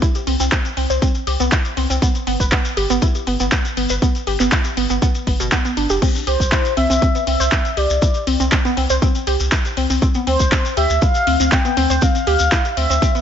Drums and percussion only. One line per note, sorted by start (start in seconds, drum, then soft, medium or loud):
0.02 kick loud
0.02 closed hi-hat medium
0.02 shekere medium
0.15 closed hi-hat soft
0.15 shekere soft
0.27 open hi-hat loud
0.40 closed hi-hat soft
0.40 shekere medium
0.52 kick loud
0.52 clap loud
0.52 closed hi-hat medium
0.52 shekere medium
0.65 closed hi-hat soft
0.65 shekere soft
0.77 open hi-hat loud
0.90 closed hi-hat soft
0.90 shekere medium
1.02 kick loud
1.02 closed hi-hat medium
1.02 shekere medium
1.14 closed hi-hat soft
1.14 shekere soft
1.27 open hi-hat loud
1.40 closed hi-hat soft
1.40 shekere medium
1.51 kick loud
1.51 clap loud
1.51 closed hi-hat medium
1.51 shekere medium
1.65 closed hi-hat soft
1.65 shekere soft
1.77 open hi-hat loud
1.90 open hi-hat medium
1.90 shekere medium
2.02 kick loud
2.02 closed hi-hat loud
2.02 shekere medium
2.15 closed hi-hat soft
2.15 shekere soft
2.27 open hi-hat loud
2.40 kick medium
2.40 closed hi-hat soft
2.40 shekere medium
2.51 kick loud
2.51 clap loud
2.51 closed hi-hat medium
2.51 shekere medium
2.65 closed hi-hat soft
2.65 shekere soft
2.77 open hi-hat loud
2.90 closed hi-hat soft
2.90 shekere medium
3.02 kick loud
3.02 closed hi-hat medium
3.02 shekere medium
3.15 closed hi-hat soft
3.15 shekere soft
3.27 open hi-hat loud
3.40 closed hi-hat soft
3.40 shekere medium
3.52 kick loud
3.52 clap loud
3.52 closed hi-hat medium
3.52 shekere medium
3.65 closed hi-hat soft
3.65 shekere soft
3.77 open hi-hat loud
3.89 closed hi-hat soft
3.89 shekere medium
4.02 kick loud
4.02 closed hi-hat loud
4.02 shekere medium
4.15 closed hi-hat soft
4.15 shekere soft
4.27 open hi-hat loud
4.40 clap soft
4.40 closed hi-hat soft
4.40 shekere medium
4.51 kick loud
4.51 clap loud
4.51 closed hi-hat loud
4.51 shekere medium
4.64 closed hi-hat soft
4.64 shekere soft
4.77 open hi-hat loud
4.90 closed hi-hat soft
4.90 shekere medium
5.02 kick loud
5.02 closed hi-hat loud
5.02 shekere medium
5.15 closed hi-hat soft
5.15 shekere soft
5.27 kick medium
5.27 open hi-hat loud
5.40 closed hi-hat soft
5.40 shekere medium
5.52 kick loud
5.52 clap loud
5.52 closed hi-hat loud
5.52 shekere medium
5.65 closed hi-hat soft
5.65 shekere soft
5.77 open hi-hat loud
5.89 open hi-hat medium
5.89 shekere medium
6.02 kick loud
6.02 closed hi-hat loud
6.02 crash medium
6.02 shekere medium
6.15 closed hi-hat soft
6.15 shekere soft
6.27 open hi-hat loud
6.40 kick medium
6.40 closed hi-hat soft
6.40 shekere medium
6.52 kick loud
6.52 clap loud
6.52 closed hi-hat medium
6.52 shekere medium
6.65 closed hi-hat soft
6.65 shekere soft
6.77 open hi-hat loud
6.90 closed hi-hat soft
6.90 shekere medium
7.02 kick loud
7.02 closed hi-hat loud
7.02 shekere medium
7.15 closed hi-hat soft
7.15 shekere soft
7.27 open hi-hat loud
7.40 closed hi-hat soft
7.40 shekere medium
7.52 kick loud
7.52 clap loud
7.52 closed hi-hat medium
7.52 shekere medium
7.65 closed hi-hat soft
7.65 shekere soft
7.77 open hi-hat loud
7.90 closed hi-hat soft
7.90 shekere medium
8.02 kick loud
8.02 closed hi-hat medium
8.02 shekere medium
8.14 closed hi-hat soft
8.14 shekere soft
8.27 open hi-hat loud
8.40 closed hi-hat soft
8.40 shekere medium
8.52 kick loud
8.52 clap loud
8.52 closed hi-hat medium
8.52 shekere medium
8.65 closed hi-hat soft
8.65 shekere soft
8.77 open hi-hat loud
8.90 closed hi-hat soft
8.90 shekere medium
9.02 kick loud
9.02 closed hi-hat medium
9.02 shekere medium
9.15 closed hi-hat soft
9.15 shekere soft
9.27 open hi-hat loud
9.40 closed hi-hat soft
9.40 shekere medium
9.52 kick loud
9.52 clap loud
9.52 closed hi-hat medium
9.52 shekere medium
9.65 closed hi-hat soft
9.65 shekere soft
9.77 open hi-hat loud
9.90 open hi-hat medium
9.90 shekere medium
10.02 kick loud
10.02 closed hi-hat medium
10.02 shekere medium
10.14 closed hi-hat soft
10.14 shekere soft
10.27 open hi-hat loud
10.40 kick medium
10.40 closed hi-hat soft
10.40 shekere medium
10.52 kick loud
10.52 clap loud
10.52 closed hi-hat medium
10.52 shekere medium
10.65 closed hi-hat soft
10.65 shekere soft
10.77 open hi-hat loud
10.90 closed hi-hat soft
10.90 shekere medium
11.01 kick loud
11.01 closed hi-hat medium
11.01 shekere medium
11.14 closed hi-hat soft
11.14 shekere soft
11.27 open hi-hat loud
11.40 closed hi-hat soft
11.40 shekere medium
11.52 kick loud
11.52 clap loud
11.52 closed hi-hat medium
11.52 shekere medium
11.65 closed hi-hat soft
11.65 shekere soft
11.77 open hi-hat loud
11.90 closed hi-hat soft
11.90 shekere medium
12.01 kick loud
12.01 closed hi-hat medium
12.01 shekere medium
12.15 closed hi-hat soft
12.15 shekere soft
12.27 open hi-hat loud
12.39 closed hi-hat soft
12.39 shekere medium
12.52 kick loud
12.52 clap loud
12.52 closed hi-hat medium
12.52 shekere medium
12.65 closed hi-hat soft
12.65 shekere soft
12.77 open hi-hat loud
12.90 closed hi-hat soft
12.90 shekere medium
13.02 kick loud
13.02 closed hi-hat medium
13.02 shekere medium
13.15 closed hi-hat soft
13.15 shekere soft